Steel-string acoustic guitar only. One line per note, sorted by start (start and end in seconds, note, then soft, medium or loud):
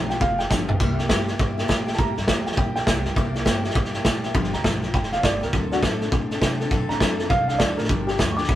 0.00 0.10 G2 medium
0.00 0.10 D3 medium
0.00 0.10 F3 medium
0.00 0.10 B3 medium
0.09 0.19 F3 soft
0.09 0.20 B3 soft
0.09 0.21 F4 medium
0.09 0.21 G4 medium
0.20 0.39 F3 medium
0.20 0.39 B3 medium
0.20 0.38 F4 medium
0.20 0.37 G4 medium
0.38 0.50 F3 soft
0.38 0.50 B3 soft
0.38 0.50 F4 medium
0.38 0.50 G4 medium
0.50 0.69 G2 medium
0.50 0.69 D3 medium
0.50 0.69 F3 medium
0.50 0.68 B3 loud
0.50 0.67 F4 medium
0.50 0.66 G4 medium
0.67 0.80 F3 soft
0.67 0.81 B3 soft
0.67 0.80 F4 medium
0.67 0.80 G4 soft
0.80 0.99 C3 loud
0.80 0.99 G3 medium
0.80 0.99 A#3 loud
0.80 0.98 E4 loud
0.80 0.97 G4 loud
0.99 1.09 A#3 soft
0.99 1.09 E4 medium
0.99 1.10 G4 medium
1.09 1.28 C3 medium
1.09 1.28 G3 loud
1.09 1.28 A#3 medium
1.09 1.27 E4 loud
1.09 1.26 G4 loud
1.27 1.38 A#3 medium
1.27 1.40 E4 medium
1.27 1.39 G4 medium
1.39 1.57 G3 medium
1.39 1.58 A#3 medium
1.39 1.58 E4 medium
1.39 1.57 G4 medium
1.58 1.68 A#3 medium
1.58 1.68 E4 medium
1.58 1.68 G4 medium
1.68 1.87 C3 medium
1.68 1.87 G3 medium
1.68 1.87 A#3 loud
1.68 1.87 E4 loud
1.68 1.85 G4 loud
1.86 1.98 A#3 medium
1.86 1.98 E4 medium
1.86 1.98 G4 medium
1.97 2.16 C3 medium
1.97 2.16 G3 medium
1.97 2.17 A#3 medium
1.97 2.16 E4 medium
1.97 2.15 G4 medium
2.16 2.28 A#3 soft
2.16 2.28 E4 soft
2.16 2.28 G4 medium
2.28 2.46 C3 medium
2.28 2.47 G3 medium
2.28 2.47 A#3 medium
2.28 2.47 E4 medium
2.28 2.45 G4 medium
2.46 2.57 A#3 soft
2.46 2.58 E4 soft
2.46 2.58 G4 medium
2.57 2.76 G3 medium
2.57 2.76 A#3 medium
2.57 2.76 E4 medium
2.57 2.75 G4 medium
2.76 2.87 A#3 soft
2.76 2.88 E4 soft
2.76 2.87 G4 medium
2.88 3.06 C3 medium
2.88 3.06 G3 medium
2.88 3.06 A#3 medium
2.88 3.06 E4 medium
2.88 3.04 G4 medium
3.06 3.17 A#3 soft
3.06 3.17 E4 soft
3.06 3.17 G4 medium
3.17 3.35 C3 loud
3.17 3.35 G3 loud
3.17 3.36 A#3 loud
3.17 3.35 E4 loud
3.17 3.33 G4 loud
3.34 3.45 A#3 soft
3.34 3.46 E4 medium
3.34 3.46 G4 medium
3.45 3.64 C3 loud
3.45 3.64 G3 loud
3.45 3.65 A#3 medium
3.45 3.64 E4 loud
3.45 3.62 G4 loud
3.63 3.74 A#3 soft
3.63 3.75 E4 medium
3.63 3.75 G4 medium
3.75 3.93 G3 medium
3.75 3.94 A#3 medium
3.75 3.93 E4 medium
3.75 3.92 G4 medium
3.93 4.05 A#3 soft
3.93 4.05 E4 medium
3.93 4.05 G4 medium
4.04 4.23 C3 medium
4.04 4.23 G3 medium
4.04 4.24 A#3 loud
4.04 4.23 E4 loud
4.04 4.21 G4 loud
4.22 4.34 A#3 soft
4.22 4.35 E4 medium
4.22 4.34 G4 medium
4.34 4.53 G2 medium
4.34 4.53 D3 loud
4.34 4.53 F3 loud
4.34 4.53 B3 loud
4.34 4.52 F4 medium
4.34 4.51 G4 loud
4.52 4.64 F3 soft
4.52 4.64 B3 soft
4.52 4.64 F4 soft
4.52 4.64 G4 medium
4.64 4.83 G2 medium
4.64 4.83 D3 medium
4.64 4.83 F3 medium
4.64 4.82 B3 medium
4.64 4.81 F4 medium
4.64 4.80 G4 medium
4.82 4.93 F3 medium
4.82 4.94 B3 soft
4.82 4.94 F4 medium
4.82 4.94 G4 medium
4.94 5.12 F3 medium
4.94 5.13 B3 medium
4.94 5.11 F4 medium
4.94 5.10 G4 medium
5.12 5.23 F3 soft
5.12 5.23 B3 soft
5.12 5.23 F4 soft
5.12 5.23 G4 medium
5.23 5.42 G2 medium
5.23 5.42 D3 medium
5.23 5.42 F3 medium
5.23 5.41 B3 medium
5.23 5.41 F4 medium
5.23 5.40 G4 medium
5.41 5.53 F3 soft
5.41 5.54 B3 soft
5.41 5.53 F4 medium
5.41 5.53 G4 medium
5.53 5.71 D3 medium
5.53 5.72 F#3 medium
5.53 5.72 C4 medium
5.53 5.71 D4 medium
5.53 5.70 A4 medium
5.71 5.82 C4 soft
5.71 5.83 D4 soft
5.71 5.83 A4 medium
5.83 6.01 D3 medium
5.83 6.01 F#3 medium
5.83 6.01 C4 medium
5.83 6.01 D4 medium
5.83 6.00 A4 medium
6.01 6.12 C4 medium
6.01 6.12 D4 medium
6.01 6.12 A4 medium
6.12 6.30 F#3 medium
6.12 6.31 C4 medium
6.12 6.31 D4 medium
6.12 6.30 A4 medium
6.31 6.41 C4 soft
6.31 6.41 D4 medium
6.31 6.42 A4 medium
6.41 6.60 D3 medium
6.41 6.60 F#3 medium
6.41 6.60 C4 loud
6.41 6.60 D4 loud
6.41 6.59 A4 loud
6.60 6.71 C4 medium
6.60 6.71 D4 medium
6.60 6.71 A4 medium
6.71 6.90 D3 medium
6.71 6.90 F#3 medium
6.71 6.90 C4 medium
6.71 6.89 D4 medium
6.71 6.88 A4 loud
6.89 7.00 C4 soft
6.89 7.01 D4 medium
6.89 7.01 A4 medium
7.01 7.19 D3 medium
7.01 7.19 F#3 medium
7.01 7.19 C4 medium
7.01 7.19 D4 medium
7.01 7.17 A4 medium
7.18 7.29 C4 soft
7.18 7.30 D4 medium
7.18 7.30 A4 medium
7.29 7.48 F#3 medium
7.29 7.49 C4 medium
7.29 7.49 D4 medium
7.29 7.47 A4 medium
7.48 7.59 C4 soft
7.48 7.59 D4 medium
7.48 7.60 A4 medium
7.59 7.78 D3 medium
7.59 7.78 F#3 medium
7.59 7.78 C4 medium
7.59 7.78 D4 loud
7.59 7.76 A4 medium
7.77 7.90 C4 soft
7.77 7.90 D4 medium
7.77 7.89 A4 medium
7.89 8.08 G2 medium
7.89 8.08 D3 medium
7.89 8.08 F3 medium
7.89 8.08 B3 medium
7.89 8.07 D4 medium
7.89 8.06 G4 loud
8.07 8.18 F3 soft
8.07 8.18 B3 soft
8.07 8.18 D4 soft
8.07 8.19 G4 medium
8.18 8.37 G2 medium
8.18 8.37 D3 medium
8.18 8.37 F3 medium
8.18 8.37 B3 medium
8.18 8.36 D4 medium
8.18 8.35 G4 medium
8.36 8.47 F3 soft
8.36 8.48 B3 medium
8.36 8.48 D4 medium
8.36 8.48 G4 medium
8.48 8.55 F3 medium
8.48 8.55 B3 medium
8.48 8.55 D4 medium
8.48 8.55 G4 medium